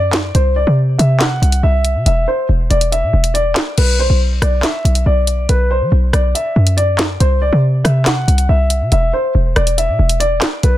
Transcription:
Already playing: 808-style bass F#2, grand piano D5
0.13 snare, clap, closed hi-hat
0.35 808-style bass C2, grand piano C5, closed hi-hat
0.56 grand piano D5
0.67 808-style bass C3
0.98 808-style bass C3, grand piano E5, closed hi-hat
1.20 grand piano F#5, snare, clap, closed hi-hat
1.42 808-style bass C2, closed hi-hat
1.52 closed hi-hat
1.63 808-style bass C2, grand piano E5
1.85 closed hi-hat
1.95 808-style bass C3
2.06 808-style bass E1, grand piano E5, closed hi-hat
2.28 grand piano C5
2.49 808-style bass E1
2.70 808-style bass E1, grand piano D5, closed hi-hat
2.81 closed hi-hat
2.92 grand piano E5, closed hi-hat
3.03 808-style bass B2
3.13 808-style bass E1
3.24 closed hi-hat
3.34 grand piano D5, closed hi-hat
3.56 snare, clap, closed hi-hat
3.78 808-style bass B1, grand piano B4, closed hi-hat, crash
3.99 grand piano C5
4.10 808-style bass B1
4.42 808-style bass B1, grand piano D5, cross-stick, closed hi-hat
4.63 grand piano E5, snare, clap, closed hi-hat
4.85 808-style bass B1, closed hi-hat
4.95 closed hi-hat
5.06 808-style bass B1, grand piano D5
5.27 closed hi-hat
5.49 808-style bass B1, grand piano B4, closed hi-hat
5.71 grand piano C5
5.81 808-style bass F#3
5.92 808-style bass B1
6.13 808-style bass B1, grand piano D5, cross-stick, closed hi-hat
6.35 grand piano E5, closed hi-hat
6.56 808-style bass F#2
6.67 closed hi-hat
6.77 grand piano D5, closed hi-hat
6.99 snare, clap, closed hi-hat
7.20 808-style bass C2, grand piano C5, closed hi-hat
7.42 grand piano D5
7.53 808-style bass C3
7.84 808-style bass C3, grand piano E5, cross-stick, closed hi-hat
8.06 grand piano F#5, snare, clap, closed hi-hat
8.28 808-style bass C2, closed hi-hat
8.38 closed hi-hat
8.49 808-style bass C2, grand piano E5
8.70 closed hi-hat
8.81 808-style bass C3
8.92 808-style bass E1, grand piano E5, closed hi-hat
9.13 grand piano C5
9.35 808-style bass E1
9.56 808-style bass E1, grand piano D5, cross-stick, closed hi-hat
9.67 closed hi-hat
9.78 grand piano E5, closed hi-hat
9.88 808-style bass B2
9.99 808-style bass E1
10.09 closed hi-hat
10.20 grand piano D5, closed hi-hat
10.42 cross-stick, snare, clap, closed hi-hat
10.63 808-style bass B1, grand piano B4, closed hi-hat

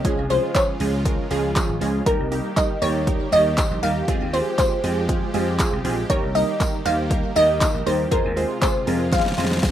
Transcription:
Already playing: synth pluck C#5
0.04 slap bass C#2, supersaw synth C#3 G#3 F4, analog polysynth F3 G#3 C#4 F4 G#4, kick, closed hi-hat
0.18 slap bass C2
0.30 analog polysynth F3 G#3 C#4 F4 G#4, synth pluck C5, open hi-hat
0.55 analog polysynth F3 G#3 C#4 F4 G#4, synth pluck C#5, kick, clap, closed hi-hat, tambourine
0.80 slap bass C#2, analog polysynth F3 G#3 C#4 F4 G#4, open hi-hat
1.05 analog polysynth F3 G#3 C#4 F4 A#4, kick, closed hi-hat
1.31 slap bass C#2, analog polysynth F3 G#3 C#4 F4 G#4, open hi-hat
1.56 analog polysynth F3 G#3 C#4 F4 G#4, kick, clap, closed hi-hat, tambourine
1.69 slap bass G#1
1.81 slap bass C#2, analog polysynth F3 G#3 C#4 F4 G#4, open hi-hat
2.06 slap bass D#2, supersaw synth D#3 A#3 G4, analog polysynth G3 A#3 D#4 G4 A#4, synth pluck A#4, kick, closed hi-hat
2.20 slap bass C2
2.31 analog polysynth G3 A#3 D#4 G4 A#4, open hi-hat
2.57 analog polysynth G3 A#3 D#4 G4 A#4, synth pluck D#5, kick, clap, closed hi-hat, tambourine
2.82 slap bass D#2, analog polysynth G3 A#3 D#4 G4 A#4, synth pluck C#5, open hi-hat
3.07 analog polysynth G3 A#3 D#4 G4 A#4, kick, closed hi-hat
3.32 slap bass D#2, analog polysynth G3 A#3 D#4 G4 C#5, synth pluck D#5, open hi-hat
3.57 analog polysynth G3 A#3 D#4 G4 C5, kick, clap, closed hi-hat, tambourine
3.71 slap bass A#1
3.83 slap bass D#2, analog polysynth G3 A#3 D#4 G4 A#4, synth pluck F5, open hi-hat
4.08 slap bass F2, supersaw synth F3 G#3, analog polysynth G#3 C4 F4 G4 G#4, kick, closed hi-hat
4.22 slap bass D#2
4.33 analog polysynth G#3 C4 F4 G4 G#4, synth pluck C5, open hi-hat
4.58 analog polysynth G#3 C4 F4 G4 G#4, synth pluck C5, kick, clap, closed hi-hat, tambourine
4.84 slap bass F2, analog polysynth G#3 C4 F4 G4 G#4, open hi-hat
5.09 analog polysynth G#3 C4 F4 G4 G#4, kick, closed hi-hat
5.34 slap bass F2, analog polysynth G#3 C4 F4 G4 G#4, open hi-hat
5.59 analog polysynth G#3 C4 F4 G4 G#4, kick, clap, closed hi-hat, tambourine
5.73 slap bass C2
5.84 slap bass A#1, analog polysynth G#3 C4 F4 G4 G#4, open hi-hat
6.09 slap bass D#2, supersaw synth D#3 A#3, analog polysynth G3 A#3 D#4 G4 A#4, synth pluck C#5, kick, closed hi-hat
6.23 slap bass C2
6.35 analog polysynth G3 A#3 D#4 G4 A#4, synth pluck D#5, open hi-hat
6.60 analog polysynth G3 A#3 D#4 G4 A#4, kick, clap, closed hi-hat, tambourine
6.85 slap bass D#2, analog polysynth G3 A#3 D#4 G4 C5, synth pluck F5, open hi-hat
7.10 analog polysynth G3 A#3 D#4 G4 A#4, kick, closed hi-hat
7.35 slap bass D#2, analog polysynth G3 A#3 D#4 G4 A#4, synth pluck D#5, open hi-hat
7.61 analog polysynth G3 A#3 D#4 G4 A#4, kick, clap, closed hi-hat, tambourine
7.74 slap bass A#1
7.86 slap bass D#2, analog polysynth G3 A#3 D#4 G4 A#4, synth pluck C5, open hi-hat
8.11 slap bass F2, supersaw synth C3 G#3 F4, analog polysynth G#3 C4 F4 G#4 C5, synth pluck A#4, kick, closed hi-hat
8.25 slap bass D#2
8.36 analog polysynth G#3 C4 F4 G#4 C5, open hi-hat
8.62 analog polysynth G#3 C4 F4 G#4 C5, synth pluck C5, kick, clap, closed hi-hat, tambourine
8.87 slap bass F2, analog polysynth G#3 C4 F4 G#4 A#4, open hi-hat
9.12 analog polysynth G#3 C4 F4 G#4 C5, synth pluck F5, kick, snare, closed hi-hat
9.19 snare
9.26 snare
9.32 snare
9.37 slap bass F2, analog polysynth G#3 C4 F4 G#4 C5, snare, open hi-hat
9.45 snare
9.51 snare
9.57 snare
9.62 analog polysynth G#3 C4 F4 G#4 C5, kick, snare, closed hi-hat, tambourine

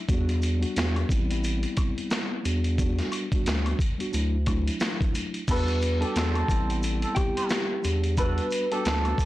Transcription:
0.08 sub bass E2, tine electric piano G3 B3 D4 F#4, kick, closed hi-hat, maracas
0.29 closed hi-hat
0.42 closed hi-hat, maracas
0.60 tine electric piano G3 B3 D4 F#4, closed hi-hat
0.76 sub bass E2, snare, closed hi-hat, maracas
0.96 closed hi-hat, high woodblock
1.09 sub bass A1, tine electric piano G3 B3 C4 E4, kick, closed hi-hat, maracas
1.29 tine electric piano G3 B3 C4 E4, closed hi-hat
1.43 closed hi-hat, maracas
1.63 closed hi-hat
1.77 kick, closed hi-hat, high woodblock, maracas
1.98 closed hi-hat
2.11 snare, closed hi-hat, maracas
2.43 sub bass E2, tine electric piano G3 B3 D4 F#4, closed hi-hat, maracas
2.64 closed hi-hat
2.77 tine electric piano G3 B3 D4 F#4, kick, closed hi-hat, maracas
2.99 snare, closed hi-hat
3.12 closed hi-hat, high woodblock, maracas
3.32 tine electric piano G3 B3 D4 F#4, kick, closed hi-hat
3.46 sub bass D2, snare, closed hi-hat, maracas
3.66 closed hi-hat, high woodblock
3.79 kick, closed hi-hat, maracas
3.98 tine electric piano G3 B3 D4 F#4, closed hi-hat
4.11 sub bass D2, tine electric piano F#3 A3 D4 E4, closed hi-hat, maracas
4.46 tine electric piano F#3 A3 D4 E4, kick, closed hi-hat, high woodblock, maracas
4.68 closed hi-hat
4.80 snare, closed hi-hat, maracas
5.01 kick, closed hi-hat
5.15 closed hi-hat, maracas
5.34 closed hi-hat
5.47 sub bass E2, tine electric piano G3 B3 D4 F#4, trumpet section A3 F#4 A4, nylon-string guitar B5, kick, closed hi-hat, crash, maracas
5.51 nylon-string guitar B4
5.68 closed hi-hat
5.81 closed hi-hat, maracas
5.99 tine electric piano G3 B3 D4 F#4, trumpet section D4 G4, nylon-string guitar A4 A5, closed hi-hat
6.16 sub bass E2, trumpet section C4 A4, snare, closed hi-hat, maracas
6.35 closed hi-hat, high woodblock
6.48 sub bass A1, tine electric piano G3 B3 C4 E4, kick, closed hi-hat, maracas
6.68 tine electric piano G3 B3 C4 E4, closed hi-hat
6.83 closed hi-hat, maracas
7.02 trumpet section C4 A4, closed hi-hat
7.15 nylon-string guitar G4 G5, kick, closed hi-hat, high woodblock, maracas
7.36 trumpet section A3 G4 C5, closed hi-hat
7.50 snare, closed hi-hat, maracas
7.82 sub bass E2, tine electric piano G3 B3 D4 G4, closed hi-hat, maracas
8.04 closed hi-hat
8.17 tine electric piano G3 B3 D4 F#4, trumpet section A3 F#4 A4, nylon-string guitar B4 B5, kick, closed hi-hat, maracas
8.38 closed hi-hat
8.51 closed hi-hat, maracas
8.71 tine electric piano G3 B3 D4 F#4, trumpet section D4 G4, nylon-string guitar A4 A5, closed hi-hat
8.84 sub bass D2, trumpet section D4 A4, snare, closed hi-hat, maracas
9.05 closed hi-hat, high woodblock
9.18 kick, closed hi-hat, maracas

